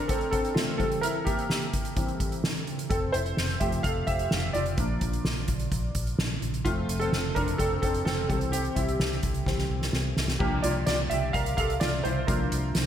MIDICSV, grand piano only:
0, 0, Header, 1, 2, 480
1, 0, Start_track
1, 0, Tempo, 468677
1, 1057, Time_signature, 4, 2, 24, 8
1, 13173, End_track
2, 0, Start_track
2, 0, Title_t, "Grand piano"
2, 0, Program_c, 0, 0
2, 0, Control_c, 0, 64, 127
2, 0, Note_on_c, 0, 53, 49
2, 0, Note_on_c, 0, 57, 67
2, 0, Note_on_c, 0, 60, 65
2, 0, Note_on_c, 0, 62, 65
2, 0, Note_on_c, 0, 65, 73
2, 0, Note_on_c, 0, 69, 93
2, 0, Note_on_c, 0, 70, 90
2, 84, Note_off_c, 0, 69, 0
2, 84, Note_on_c, 0, 69, 80
2, 102, Note_off_c, 0, 60, 0
2, 102, Note_on_c, 0, 60, 65
2, 305, Note_off_c, 0, 69, 0
2, 320, Note_on_c, 0, 69, 80
2, 323, Note_off_c, 0, 60, 0
2, 340, Note_on_c, 0, 60, 63
2, 376, Note_off_c, 0, 69, 0
2, 394, Note_off_c, 0, 60, 0
2, 559, Note_off_c, 0, 65, 0
2, 559, Note_on_c, 0, 65, 68
2, 579, Note_off_c, 0, 57, 0
2, 579, Note_on_c, 0, 57, 57
2, 774, Note_off_c, 0, 53, 0
2, 790, Note_off_c, 0, 65, 0
2, 798, Note_on_c, 0, 69, 80
2, 801, Note_off_c, 0, 57, 0
2, 804, Note_on_c, 0, 52, 43
2, 810, Note_on_c, 0, 55, 41
2, 818, Note_on_c, 0, 60, 55
2, 828, Control_c, 0, 64, 0
2, 832, Note_off_c, 0, 62, 0
2, 836, Note_off_c, 0, 70, 0
2, 1020, Control_c, 0, 64, 127
2, 1030, Note_off_c, 0, 69, 0
2, 1039, Note_on_c, 0, 70, 89
2, 1041, Note_off_c, 0, 60, 0
2, 1060, Note_on_c, 0, 64, 65
2, 1278, Note_on_c, 0, 67, 83
2, 1281, Note_off_c, 0, 64, 0
2, 1295, Note_off_c, 0, 70, 0
2, 1298, Note_on_c, 0, 58, 55
2, 1993, Note_off_c, 0, 52, 0
2, 1997, Note_off_c, 0, 55, 0
2, 2008, Note_on_c, 0, 52, 40
2, 2013, Note_on_c, 0, 55, 37
2, 2017, Note_on_c, 0, 60, 43
2, 2207, Note_off_c, 0, 67, 0
2, 2216, Note_off_c, 0, 58, 0
2, 2228, Note_off_c, 0, 52, 0
2, 2231, Note_off_c, 0, 55, 0
2, 2233, Note_off_c, 0, 60, 0
2, 2966, Note_on_c, 0, 69, 73
2, 2986, Note_on_c, 0, 60, 58
2, 2991, Control_c, 0, 64, 0
2, 3150, Control_c, 0, 64, 127
2, 3194, Note_off_c, 0, 69, 0
2, 3200, Note_on_c, 0, 72, 83
2, 3205, Note_off_c, 0, 60, 0
2, 3220, Note_on_c, 0, 64, 58
2, 3665, Note_off_c, 0, 64, 0
2, 3688, Note_on_c, 0, 76, 77
2, 3689, Note_on_c, 0, 53, 48
2, 3693, Note_on_c, 0, 57, 42
2, 3700, Note_on_c, 0, 60, 45
2, 3703, Note_off_c, 0, 72, 0
2, 3703, Note_on_c, 0, 67, 63
2, 3923, Note_off_c, 0, 67, 0
2, 3924, Note_on_c, 0, 77, 84
2, 3939, Note_on_c, 0, 69, 62
2, 3940, Note_off_c, 0, 76, 0
2, 3980, Note_off_c, 0, 77, 0
2, 3993, Note_off_c, 0, 69, 0
2, 4166, Note_on_c, 0, 76, 102
2, 4179, Note_on_c, 0, 67, 67
2, 4624, Note_off_c, 0, 67, 0
2, 4642, Note_on_c, 0, 74, 82
2, 4659, Note_on_c, 0, 65, 52
2, 4666, Note_off_c, 0, 76, 0
2, 4852, Note_off_c, 0, 53, 0
2, 4854, Note_off_c, 0, 57, 0
2, 4857, Note_off_c, 0, 60, 0
2, 4884, Note_on_c, 0, 53, 48
2, 4893, Note_on_c, 0, 58, 42
2, 4897, Note_on_c, 0, 62, 53
2, 4910, Control_c, 0, 64, 0
2, 5070, Control_c, 0, 64, 127
2, 5209, Note_off_c, 0, 53, 0
2, 5214, Note_off_c, 0, 58, 0
2, 5216, Note_off_c, 0, 62, 0
2, 5328, Note_off_c, 0, 74, 0
2, 5337, Note_off_c, 0, 65, 0
2, 6807, Note_on_c, 0, 65, 87
2, 6812, Note_on_c, 0, 53, 51
2, 6821, Note_on_c, 0, 57, 67
2, 6824, Note_on_c, 0, 60, 51
2, 6828, Control_c, 0, 64, 0
2, 7037, Control_c, 0, 64, 127
2, 7134, Note_off_c, 0, 53, 0
2, 7140, Note_off_c, 0, 60, 0
2, 7146, Note_off_c, 0, 65, 0
2, 7158, Note_off_c, 0, 57, 0
2, 7164, Note_on_c, 0, 69, 90
2, 7186, Note_on_c, 0, 60, 65
2, 7516, Note_off_c, 0, 60, 0
2, 7526, Note_on_c, 0, 70, 79
2, 7541, Note_off_c, 0, 69, 0
2, 7547, Note_on_c, 0, 62, 69
2, 7765, Note_off_c, 0, 62, 0
2, 7767, Note_on_c, 0, 69, 94
2, 7779, Note_off_c, 0, 70, 0
2, 7785, Note_on_c, 0, 60, 68
2, 7993, Note_off_c, 0, 69, 0
2, 8005, Note_off_c, 0, 60, 0
2, 8008, Note_on_c, 0, 69, 88
2, 8028, Note_on_c, 0, 60, 64
2, 8231, Note_off_c, 0, 69, 0
2, 8246, Note_off_c, 0, 60, 0
2, 8247, Note_on_c, 0, 69, 85
2, 8265, Note_on_c, 0, 60, 66
2, 8474, Note_off_c, 0, 69, 0
2, 8484, Note_off_c, 0, 60, 0
2, 8489, Note_on_c, 0, 69, 73
2, 8494, Note_on_c, 0, 52, 46
2, 8499, Note_on_c, 0, 55, 44
2, 8506, Note_on_c, 0, 60, 62
2, 8509, Control_c, 0, 64, 0
2, 8694, Control_c, 0, 64, 127
2, 8723, Note_on_c, 0, 67, 89
2, 8725, Note_off_c, 0, 60, 0
2, 8740, Note_off_c, 0, 69, 0
2, 8740, Note_on_c, 0, 60, 64
2, 8962, Note_off_c, 0, 60, 0
2, 8964, Note_on_c, 0, 64, 69
2, 8969, Note_off_c, 0, 55, 0
2, 8977, Note_off_c, 0, 67, 0
2, 8984, Note_on_c, 0, 55, 52
2, 9675, Note_off_c, 0, 52, 0
2, 9680, Note_off_c, 0, 55, 0
2, 9690, Note_on_c, 0, 52, 41
2, 9696, Note_on_c, 0, 55, 34
2, 9701, Note_on_c, 0, 60, 44
2, 9889, Note_off_c, 0, 64, 0
2, 9909, Note_off_c, 0, 52, 0
2, 9912, Note_off_c, 0, 55, 0
2, 9915, Note_off_c, 0, 60, 0
2, 10643, Note_on_c, 0, 67, 80
2, 10650, Note_on_c, 0, 53, 45
2, 10658, Note_on_c, 0, 58, 59
2, 10663, Note_on_c, 0, 62, 52
2, 10671, Control_c, 0, 64, 0
2, 10856, Control_c, 0, 64, 127
2, 10881, Note_on_c, 0, 74, 77
2, 10885, Note_off_c, 0, 58, 0
2, 10897, Note_off_c, 0, 67, 0
2, 10902, Note_on_c, 0, 65, 64
2, 10937, Note_off_c, 0, 74, 0
2, 10955, Note_off_c, 0, 65, 0
2, 10972, Note_off_c, 0, 53, 0
2, 10979, Note_off_c, 0, 62, 0
2, 11126, Note_on_c, 0, 74, 88
2, 11148, Note_on_c, 0, 65, 61
2, 11182, Note_off_c, 0, 74, 0
2, 11201, Note_off_c, 0, 65, 0
2, 11363, Note_on_c, 0, 76, 81
2, 11389, Note_on_c, 0, 67, 60
2, 11606, Note_off_c, 0, 67, 0
2, 11606, Note_on_c, 0, 77, 89
2, 11618, Note_off_c, 0, 76, 0
2, 11626, Note_on_c, 0, 70, 70
2, 11835, Note_off_c, 0, 77, 0
2, 11845, Note_off_c, 0, 70, 0
2, 11851, Note_on_c, 0, 77, 86
2, 11872, Note_on_c, 0, 69, 63
2, 12086, Note_on_c, 0, 74, 84
2, 12088, Note_off_c, 0, 69, 0
2, 12101, Note_off_c, 0, 77, 0
2, 12107, Note_on_c, 0, 65, 71
2, 12326, Note_off_c, 0, 65, 0
2, 12328, Note_on_c, 0, 72, 74
2, 12339, Note_off_c, 0, 74, 0
2, 12349, Note_on_c, 0, 64, 59
2, 12567, Note_off_c, 0, 64, 0
2, 12568, Note_on_c, 0, 70, 68
2, 12575, Note_on_c, 0, 53, 49
2, 12580, Note_off_c, 0, 72, 0
2, 12580, Note_on_c, 0, 58, 43
2, 12586, Note_on_c, 0, 62, 55
2, 12591, Note_on_c, 0, 65, 57
2, 13173, Note_off_c, 0, 53, 0
2, 13173, Note_off_c, 0, 58, 0
2, 13173, Note_off_c, 0, 62, 0
2, 13173, Note_off_c, 0, 65, 0
2, 13173, Note_off_c, 0, 70, 0
2, 13173, End_track
0, 0, End_of_file